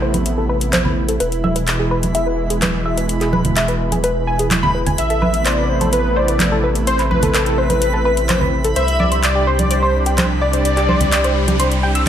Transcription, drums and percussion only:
0.14 closed hi-hat, high conga
0.26 closed hi-hat
0.61 closed hi-hat
0.73 clap, closed hi-hat, high conga
0.85 low conga
1.09 closed hi-hat
1.20 closed hi-hat
1.32 closed hi-hat
1.44 high conga
1.56 closed hi-hat
1.67 clap, closed hi-hat
2.03 closed hi-hat, high conga
2.15 closed hi-hat
2.50 closed hi-hat
2.62 clap, closed hi-hat, high conga
2.97 closed hi-hat
3.09 closed hi-hat
3.21 clap, closed hi-hat
3.33 high conga
3.45 closed hi-hat, low conga
3.56 clap, closed hi-hat
3.68 closed hi-hat
3.92 closed hi-hat, high conga
4.04 closed hi-hat
4.39 closed hi-hat
4.51 clap, closed hi-hat, high conga
4.63 low conga
4.87 closed hi-hat, low conga
4.98 closed hi-hat
5.10 closed hi-hat
5.22 high conga
5.34 closed hi-hat
5.45 clap, closed hi-hat
5.81 closed hi-hat, high conga
5.93 closed hi-hat
6.28 closed hi-hat
6.39 clap, closed hi-hat, high conga
6.75 closed hi-hat
6.87 closed hi-hat
6.99 clap, closed hi-hat
7.11 high conga
7.23 closed hi-hat, low conga
7.34 clap, closed hi-hat
7.46 closed hi-hat
7.70 closed hi-hat, high conga
7.82 closed hi-hat
8.17 closed hi-hat
8.29 clap, closed hi-hat, high conga
8.41 low conga
8.64 closed hi-hat
8.76 closed hi-hat
8.88 closed hi-hat
9.00 high conga
9.12 closed hi-hat
9.23 clap, closed hi-hat
9.59 closed hi-hat, high conga
9.71 closed hi-hat
10.06 closed hi-hat
10.18 clap, closed hi-hat, high conga
10.53 closed hi-hat
10.65 closed hi-hat
10.77 clap, closed hi-hat
10.89 high conga
11.00 closed hi-hat, low conga
11.12 clap, closed hi-hat
11.24 closed hi-hat
11.48 closed hi-hat, high conga
11.60 closed hi-hat
11.72 closed hi-hat
11.95 closed hi-hat

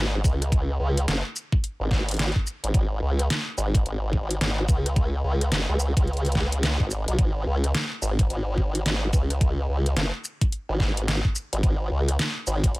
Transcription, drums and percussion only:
0.24 kick, shaker
0.42 cross-stick, closed hi-hat
0.52 kick, closed hi-hat
0.97 closed hi-hat
1.08 snare, closed hi-hat
1.36 shaker
1.52 kick
1.64 closed hi-hat
1.91 kick, snare
2.09 closed hi-hat
2.11 closed hi-hat
2.14 closed hi-hat
2.17 snare, closed hi-hat
2.19 closed hi-hat
2.23 closed hi-hat
2.28 closed hi-hat
2.32 kick, closed hi-hat
2.47 shaker
2.64 closed hi-hat
2.74 kick, closed hi-hat
3.19 cross-stick, closed hi-hat
3.30 snare, closed hi-hat
3.58 shaker
3.75 kick, closed hi-hat
3.86 closed hi-hat
4.13 kick
4.31 closed hi-hat
4.41 snare, closed hi-hat
4.69 kick, shaker
4.86 cross-stick, closed hi-hat
4.96 kick, closed hi-hat
5.41 cross-stick, closed hi-hat
5.52 snare, closed hi-hat
5.80 shaker
5.97 kick, closed hi-hat
6.08 closed hi-hat
6.13 closed hi-hat
6.17 closed hi-hat
6.25 closed hi-hat
6.32 kick, snare, closed hi-hat
6.52 closed hi-hat
6.63 snare, closed hi-hat
6.80 kick
6.91 shaker
7.08 closed hi-hat
7.19 kick, closed hi-hat
7.64 cross-stick, closed hi-hat
7.75 snare, closed hi-hat
8.02 shaker
8.19 kick, closed hi-hat
8.30 closed hi-hat
8.58 kick
8.75 closed hi-hat
8.86 snare, closed hi-hat
9.13 kick, shaker
9.30 cross-stick, closed hi-hat
9.41 kick, closed hi-hat
9.86 closed hi-hat
9.97 snare, closed hi-hat
10.25 shaker
10.41 kick, closed hi-hat
10.52 closed hi-hat
10.80 kick, snare
10.97 closed hi-hat
11.08 snare, closed hi-hat
11.25 kick
11.36 shaker
11.53 closed hi-hat
11.63 kick, closed hi-hat
12.08 cross-stick, closed hi-hat
12.19 snare, closed hi-hat
12.47 shaker
12.64 kick, closed hi-hat
12.75 closed hi-hat

